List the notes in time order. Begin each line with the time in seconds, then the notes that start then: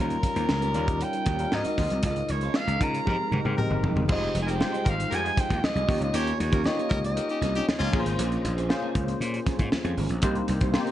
Already playing: D#2 G3 C#4 D#4 G4
0.00 F4 A#4
0.10 muted clean electric guitar stroke, closed hi-hat
0.22 muted clean electric guitar stroke, kick, closed hi-hat, muted conga, high conga
0.36 D#2 C#4 G4 C5, closed hi-hat
0.49 C#2, muted clean electric guitar stroke, snare, muted conga
0.62 C#4 G4 A#4, closed hi-hat
0.74 D#2 G3 C#4 D#4 F4 A#4, muted clean electric guitar stroke, closed hi-hat, low conga
0.87 muted clean electric guitar stroke, kick, closed hi-hat
1.01 G5, closed hi-hat
1.13 muted clean electric guitar stroke, closed hi-hat
1.25 D#2 C#4 G4 A#4, kick, snare, closed hi-hat, muted conga, high conga
1.39 G3 C#4 D#4 F4 A#4, muted clean electric guitar stroke, closed hi-hat
1.52 G#2 G#3 C4 D#4 F#4 A#4 D#5, muted clean electric guitar stroke, snare, muted conga, high conga
1.65 D#4 F#4 D#5, closed hi-hat, high conga
1.77 D#2 D#4 F#4 C5, kick, snare, open hi-hat, low conga
1.90 C2, muted clean electric guitar stroke, closed hi-hat
2.03 C#2 G#3 C#4 D#4 F4 A4 A#4 D#5, kick, closed hi-hat, low conga
2.11 A#4
2.16 muted clean electric guitar stroke, closed hi-hat
2.29 C#2 C#5, muted clean electric guitar stroke, closed hi-hat, high conga
2.41 D#4 F4 C5, closed hi-hat
2.54 F5, muted clean electric guitar stroke, snare
2.67 C#2 D#4 F4 A#4, closed hi-hat
2.79 C#3 G#3 C#4 D#4 F4 A#4 A#5, muted clean electric guitar stroke, kick, closed hi-hat, muted conga, low conga
2.92 muted clean electric guitar stroke, closed hi-hat
3.05 G#2 G#3 C4 D#4 G4 A#4, muted clean electric guitar stroke, kick, high tom, muted conga
3.19 muted clean electric guitar stroke
3.31 G#2 D#4 G4 A#4, mid tom, muted conga, high conga
3.45 G#2 G#3 C4 D#4 G4 A#4, muted clean electric guitar stroke, mid tom
3.57 D#4 G4 A#4, muted clean electric guitar stroke, mid tom, high conga
3.70 G1 C4 G4 C5, high conga
3.83 F1 C4 G4 A#4, floor tom, low conga
3.95 G1, muted clean electric guitar stroke, floor tom
4.08 F1 G#3 D#4 F4 G4 G#4 C5, kick, crash
4.12 D#5
4.22 muted clean electric guitar stroke
4.34 F1, muted clean electric guitar stroke, closed hi-hat, high conga
4.42 G#5
4.47 D#4 G4 G#4 A#4 D#5 G5, closed hi-hat
4.59 G3 D#4 F4 G4 C5, muted clean electric guitar stroke, snare, muted conga
4.66 G#3
4.73 D#4 G#4 C5, closed hi-hat
4.84 G#1 D#4 G4 A#4, muted clean electric guitar stroke, kick, closed hi-hat, low conga
4.89 F5
4.98 muted clean electric guitar stroke, closed hi-hat
5.11 F2 D#4 G4 A#4 G#5, closed hi-hat
5.24 D#4 F4 G#4, muted clean electric guitar stroke, closed hi-hat
5.36 D#4 G#4 C5 G5, kick, snare, closed hi-hat, muted conga, high conga
5.49 D#2 D#4 F4 G#4, muted clean electric guitar stroke, kick, closed hi-hat
5.63 D#5, muted clean electric guitar stroke, snare, high conga
5.75 C2 D#4 G#4 D#5, closed hi-hat, high conga
5.87 D#2 A#3 C#4 D#4 F4 G4 A#4 C#5, kick, snare, open hi-hat, muted conga, low conga
6.00 C#2 D#5, muted clean electric guitar stroke, closed hi-hat
6.13 D#2 C#4 D#4 G4 A#4 C#5, closed hi-hat, muted conga
6.25 muted clean electric guitar stroke, closed hi-hat
6.38 D#2 C#5, muted clean electric guitar stroke, closed hi-hat, high conga
6.51 C#4 D#4 G4 A#4 C5, kick, closed hi-hat
6.64 A#3 D#4 F4 G4 C#5 D#5, muted clean electric guitar stroke, snare, muted conga
6.77 C#4 G4 A#4, closed hi-hat
6.89 C#2 D#4 G4 A#4, muted clean electric guitar stroke, kick, closed hi-hat, low conga
7.02 D#5, muted clean electric guitar stroke, closed hi-hat
7.16 D#4 G4 A#4, closed hi-hat, muted conga
7.29 C#4 D#4 G4, muted clean electric guitar stroke, closed hi-hat
7.41 C2 C#4 G4 A#4, snare, closed hi-hat, high conga
7.55 C#4 D#4 G4, muted clean electric guitar stroke, closed hi-hat
7.68 muted clean electric guitar stroke, snare, high conga
7.79 C#2 A#3 C#4 F4 G4 C5, high conga
7.93 A#1 A#3 C#4 F4 G#4 A#4, kick, snare, crash, muted conga, low conga
8.00 C5
8.06 G#1, muted clean electric guitar stroke, closed hi-hat
8.18 A#1 C#4 G#4 A#4, closed hi-hat
8.31 muted clean electric guitar stroke, closed hi-hat
8.44 A#1, muted clean electric guitar stroke, closed hi-hat, high conga
8.57 C#4 G#4 C5, closed hi-hat
8.69 A#3 C#4 F4 G#4 C5, muted clean electric guitar stroke, snare, muted conga
8.83 C#4 G#4 A#4
8.95 C#2, muted clean electric guitar stroke, kick, closed hi-hat, muted conga, low conga
9.08 muted clean electric guitar stroke, closed hi-hat
9.20 A#2, closed hi-hat, muted conga
9.34 muted clean electric guitar stroke, closed hi-hat
9.46 C#4 G#4 A#4, kick, snare, closed hi-hat, muted conga, high conga
9.59 G#2, muted clean electric guitar stroke, kick, closed hi-hat
9.72 muted clean electric guitar stroke, snare, muted conga, high conga
9.84 F2 C#4 G#4 C5, closed hi-hat, high conga
9.97 G#1 C#4 G#4 A#4, open hi-hat, low conga
10.09 A#1, muted clean electric guitar stroke, closed hi-hat
10.22 C2 A#3 C4 D#4 G4 A#4 C5, kick, closed hi-hat
10.35 muted clean electric guitar stroke, closed hi-hat
10.48 C2, closed hi-hat, high conga
10.61 D#4 G4 C5, kick, closed hi-hat
10.73 A#3 C4 D#4 G4 C5, snare, muted conga
10.86 D#4 G4 A#4, closed hi-hat